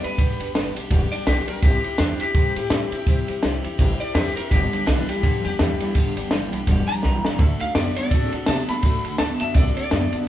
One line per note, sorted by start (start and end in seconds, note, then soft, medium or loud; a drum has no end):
0.03 0.17 G3 soft
0.03 0.18 B3 medium
0.03 0.18 D4 medium
0.03 0.18 G4 medium
0.03 0.74 B4 loud
0.03 muted upright bass stroke medium
0.03 ride medium
0.17 0.33 G1 medium
0.17 0.39 G2 medium
0.17 0.40 D3 medium
0.17 0.40 G3 medium
0.17 0.40 B3 medium
0.17 0.39 D4 medium
0.17 0.38 G4 medium
0.17 kick loud
0.17 ride medium
0.40 0.49 G1 medium
0.40 0.53 G3 soft
0.40 0.53 B3 soft
0.40 0.54 D4 soft
0.40 0.54 G4 medium
0.40 ride medium
0.54 0.69 G1 medium
0.54 0.76 G3 medium
0.54 0.76 B3 medium
0.54 0.75 D4 medium
0.54 0.74 G4 medium
0.54 snare loud
0.54 ride medium
0.75 0.86 B1 medium
0.75 0.90 G3 soft
0.75 0.90 B3 soft
0.75 0.90 D4 medium
0.75 0.90 G4 medium
0.75 ride medium
0.90 1.05 E1 loud
0.90 1.12 G2 medium
0.90 1.12 D3 loud
0.90 1.12 G3 medium
0.90 1.12 B3 loud
0.90 1.12 D4 loud
0.90 1.11 G4 loud
0.90 kick loud
0.90 ride loud
1.12 1.25 G3 soft
1.12 1.26 B3 soft
1.12 1.27 D4 soft
1.12 1.26 G4 medium
1.12 1.26 D5 medium
1.12 muted upright bass stroke medium
1.12 ride medium
1.26 1.41 B1 medium
1.26 1.48 G3 medium
1.26 1.48 B3 medium
1.26 1.48 D4 medium
1.26 1.47 G4 medium
1.26 1.46 G4 medium
1.26 snare loud
1.26 ride medium
1.48 1.62 G3 soft
1.48 1.63 B3 medium
1.48 1.63 D4 medium
1.48 1.62 G4 medium
1.48 1.62 A#4 medium
1.48 muted upright bass stroke medium
1.48 ride medium
1.62 1.77 C2 medium
1.62 1.84 C3 medium
1.62 1.84 G3 medium
1.62 1.85 C4 medium
1.62 1.84 E4 medium
1.62 1.98 G4 loud
1.62 1.83 G4 medium
1.62 kick loud
1.62 ride medium
1.84 1.98 C4 soft
1.84 1.99 E4 soft
1.84 1.99 G4 medium
1.84 muted upright bass stroke medium
1.84 ride medium
1.98 2.13 E2 medium
1.98 2.20 G3 medium
1.98 2.21 C4 medium
1.98 2.20 D4 loud
1.98 2.21 E4 medium
1.98 2.19 G4 medium
1.98 snare loud
1.98 ride medium
2.20 2.35 C4 soft
2.20 2.36 E4 soft
2.20 2.55 G4 loud
2.20 2.35 G4 soft
2.20 muted upright bass stroke medium
2.20 ride medium
2.34 2.49 G2 loud
2.34 2.57 C3 medium
2.34 2.57 G3 medium
2.34 2.57 C4 medium
2.34 2.56 E4 medium
2.34 2.55 G4 medium
2.34 kick loud
2.34 ride medium
2.56 2.66 A2 loud
2.56 2.71 C4 soft
2.56 2.71 E4 soft
2.56 3.61 G4 loud
2.56 2.71 G4 medium
2.56 ride medium
2.70 2.85 A2 medium
2.70 2.93 G3 medium
2.70 2.93 C4 medium
2.70 2.92 E4 medium
2.70 2.91 G4 medium
2.70 snare loud
2.70 ride medium
2.92 3.06 C4 soft
2.92 3.07 E4 medium
2.92 3.07 G4 medium
2.92 muted upright bass stroke medium
2.92 ride medium
3.07 3.21 C2 medium
3.07 3.28 C3 medium
3.07 3.29 G3 medium
3.07 3.29 C4 loud
3.07 3.29 E4 medium
3.07 3.27 G4 loud
3.07 kick loud
3.07 ride medium
3.28 3.38 C2 medium
3.28 3.42 C4 medium
3.28 3.43 E4 medium
3.28 3.43 G4 medium
3.28 ride medium
3.42 3.58 C2 medium
3.42 3.64 G3 medium
3.42 3.64 C4 medium
3.42 3.64 E4 medium
3.42 3.62 G4 medium
3.42 snare loud
3.42 ride medium
3.63 3.75 E2 medium
3.63 3.77 C4 soft
3.63 3.78 E4 medium
3.63 3.78 G4 medium
3.63 ride medium
3.77 3.93 A1 loud
3.77 4.00 C3 medium
3.77 4.00 G3 medium
3.77 4.00 C4 loud
3.77 4.00 E4 loud
3.77 3.99 G4 loud
3.77 kick loud
3.77 ride medium
4.00 4.15 C4 medium
4.00 4.15 E4 soft
4.00 4.15 G4 medium
4.00 4.14 D5 loud
4.00 muted upright bass stroke medium
4.00 ride medium
4.14 4.29 E2 loud
4.14 4.37 G3 medium
4.14 4.37 C4 medium
4.14 4.37 E4 medium
4.14 4.36 G4 loud
4.14 4.35 G4 medium
4.14 snare loud
4.14 ride loud
4.36 4.52 C4 soft
4.36 4.52 E4 medium
4.36 4.51 G4 medium
4.36 4.50 A#4 loud
4.36 muted upright bass stroke medium
4.36 ride medium
4.50 4.66 G1 medium
4.50 4.84 G2 medium
4.50 4.73 G2 medium
4.50 4.84 D3 medium
4.50 4.73 D3 medium
4.50 4.73 G3 medium
4.50 4.72 B3 medium
4.50 4.72 D4 medium
4.50 4.86 G4 loud
4.50 4.71 G4 medium
4.50 kick loud
4.50 ride medium
4.72 4.86 G3 soft
4.72 4.87 B3 soft
4.72 4.87 D4 soft
4.72 4.87 G4 medium
4.72 muted upright bass stroke medium
4.72 ride medium
4.86 5.02 B1 medium
4.86 5.07 G2 medium
4.86 5.07 E3 medium
4.86 5.09 G3 medium
4.86 5.09 B3 medium
4.86 5.08 D4 loud
4.86 5.09 D4 medium
4.86 5.08 G4 medium
4.86 snare loud
4.86 ride loud
5.09 5.22 G2 medium
5.09 5.22 E3 medium
5.09 5.23 G3 soft
5.09 5.24 B3 soft
5.09 5.24 D4 medium
5.09 5.23 G4 medium
5.09 5.43 G4 loud
5.09 muted upright bass stroke medium
5.09 ride medium
5.23 5.38 D2 loud
5.23 5.56 G2 medium
5.23 5.45 G2 medium
5.23 5.45 D3 medium
5.23 5.57 F3 loud
5.23 5.46 G3 medium
5.23 5.45 B3 medium
5.23 5.45 D4 medium
5.23 5.44 G4 medium
5.23 kick loud
5.23 ride medium
5.45 5.55 E2 loud
5.45 5.59 G3 soft
5.45 5.60 B3 medium
5.45 5.60 D4 medium
5.45 6.50 G4 loud
5.45 5.59 G4 medium
5.45 ride medium
5.59 5.74 E2 loud
5.59 5.79 G2 medium
5.59 5.79 E3 loud
5.59 5.81 G3 medium
5.59 5.81 B3 medium
5.59 5.81 D4 medium
5.59 5.79 G4 medium
5.59 snare loud
5.59 ride medium
5.80 5.94 G2 medium
5.80 5.94 E3 medium
5.80 5.95 G3 soft
5.80 5.95 B3 medium
5.80 5.95 D4 medium
5.80 5.95 G4 medium
5.80 muted upright bass stroke medium
5.80 ride medium
5.95 6.10 G1 loud
5.95 6.28 G2 medium
5.95 6.17 G2 medium
5.95 6.29 D3 medium
5.95 6.17 D3 medium
5.95 6.17 G3 medium
5.95 6.17 B3 medium
5.95 6.16 D4 loud
5.95 6.15 G4 medium
5.95 kick loud
5.95 ride medium
6.16 6.26 G1 medium
6.16 6.29 G3 medium
6.16 6.30 B3 medium
6.16 6.31 D4 medium
6.16 6.31 G4 medium
6.16 ride medium
6.30 6.45 G1 medium
6.30 6.50 G2 medium
6.30 6.50 E3 medium
6.30 6.53 G3 medium
6.30 6.53 B3 medium
6.30 6.52 D4 medium
6.30 6.51 G4 medium
6.30 snare loud
6.30 ride medium
6.52 6.62 B1 medium
6.52 6.65 G2 medium
6.52 6.66 E3 medium
6.52 6.67 G3 soft
6.52 6.67 B3 medium
6.52 6.67 D4 medium
6.52 6.67 G4 medium
6.52 ride medium
6.66 6.81 E1 loud
6.66 7.00 G2 medium
6.66 6.89 G2 medium
6.66 6.89 D3 medium
6.66 7.00 F3 medium
6.66 6.89 G3 medium
6.66 6.89 B3 medium
6.66 6.88 D4 loud
6.66 6.87 G4 loud
6.66 kick loud
6.66 ride medium
6.88 7.01 G3 soft
6.88 7.02 B3 soft
6.88 7.03 D4 medium
6.88 7.03 G4 medium
6.88 7.37 A#5 loud
6.88 muted upright bass stroke medium
6.88 ride medium
7.02 7.18 B1 medium
7.02 7.22 G2 medium
7.02 7.22 E3 loud
7.02 7.25 G3 medium
7.02 7.25 B3 medium
7.02 7.24 D4 medium
7.02 7.23 G4 medium
7.02 snare medium
7.24 7.38 G2 medium
7.24 7.39 G3 medium
7.24 7.40 B3 medium
7.24 7.39 D4 medium
7.24 7.39 G4 medium
7.24 muted upright bass stroke medium
7.24 snare loud
7.38 7.53 D2 medium
7.38 7.72 D3 medium
7.38 7.61 D3 medium
7.38 7.72 A3 loud
7.38 7.61 A3 medium
7.38 7.61 D4 medium
7.38 7.61 F#4 medium
7.38 7.59 A4 medium
7.38 kick loud
7.38 ride medium
7.60 7.74 D4 soft
7.60 7.75 F#4 soft
7.60 7.75 A4 medium
7.60 7.74 F5 loud
7.60 muted upright bass stroke medium
7.60 ride medium
7.74 7.90 F#2 medium
7.74 7.95 D3 medium
7.74 7.96 A3 medium
7.74 7.95 B3 medium
7.74 7.97 D4 medium
7.74 7.97 F#4 medium
7.74 7.96 A4 medium
7.74 7.95 D5 loud
7.74 snare loud
7.74 ride loud
7.96 8.09 D3 medium
7.96 8.10 B3 medium
7.96 8.12 D4 soft
7.96 8.12 F#4 soft
7.96 8.11 A4 soft
7.96 8.32 D5 loud
7.96 muted upright bass stroke medium
7.96 ride medium
8.10 8.26 A2 loud
8.10 8.44 D3 loud
8.10 8.33 D3 medium
8.10 8.34 A3 medium
8.10 8.44 C4 loud
8.10 8.34 D4 medium
8.10 8.33 F#4 loud
8.10 8.32 A4 medium
8.10 kick loud
8.10 ride loud
8.32 8.43 B2 medium
8.32 8.47 D4 soft
8.32 8.48 F#4 medium
8.32 8.48 A4 medium
8.32 ride medium
8.46 8.62 C3 medium
8.46 8.67 D3 medium
8.46 8.69 A3 medium
8.46 8.67 B3 loud
8.46 8.69 D4 medium
8.46 8.69 F#4 medium
8.46 8.67 A4 medium
8.46 8.69 A5 loud
8.46 snare loud
8.46 ride medium
8.68 8.82 D3 medium
8.68 8.82 B3 loud
8.68 8.83 D4 medium
8.68 8.84 F#4 soft
8.68 8.83 A4 medium
8.68 9.18 B5 loud
8.68 muted upright bass stroke medium
8.68 ride medium
8.83 8.97 D2 loud
8.83 9.16 D3 medium
8.83 9.05 D3 medium
8.83 9.17 A3 loud
8.83 9.05 A3 medium
8.83 9.06 D4 medium
8.83 9.05 F#4 medium
8.83 9.04 A4 medium
8.83 kick loud
8.83 ride medium
9.05 9.14 D2 medium
9.05 9.19 D4 soft
9.05 9.20 F#4 medium
9.05 9.19 A4 medium
9.05 ride medium
9.18 9.34 D2 loud
9.18 9.39 D3 medium
9.18 9.41 A3 medium
9.18 9.39 B3 medium
9.18 9.41 D4 medium
9.18 9.41 F#4 medium
9.18 9.40 A4 medium
9.18 9.40 A5 loud
9.18 snare loud
9.18 ride medium
9.40 9.51 F#2 medium
9.40 9.54 D3 medium
9.40 9.54 B3 medium
9.40 9.54 D4 soft
9.40 9.55 F#4 soft
9.40 9.55 A4 medium
9.40 9.55 E5 loud
9.40 ride medium
9.54 9.70 C2 medium
9.54 9.77 D3 medium
9.54 9.88 D3 medium
9.54 9.77 A3 medium
9.54 9.89 C4 medium
9.54 9.77 D4 medium
9.54 9.77 F#4 medium
9.54 9.76 A4 medium
9.54 9.76 D5 loud
9.54 kick loud
9.54 ride medium
9.77 9.90 D4 medium
9.77 9.91 F#4 medium
9.77 9.91 A4 medium
9.77 10.28 D5 loud
9.77 muted upright bass stroke medium
9.77 ride medium
9.90 10.06 F#2 loud
9.90 10.10 D3 medium
9.90 10.12 A3 medium
9.90 10.10 B3 loud
9.90 10.13 D4 medium
9.90 10.12 F#4 medium
9.90 10.11 A4 medium
9.90 snare loud
9.90 ride medium
10.12 10.26 D3 medium
10.12 10.26 B3 medium
10.12 10.27 D4 soft
10.12 10.27 F#4 medium
10.12 10.27 A4 medium
10.12 muted upright bass stroke medium
10.12 ride medium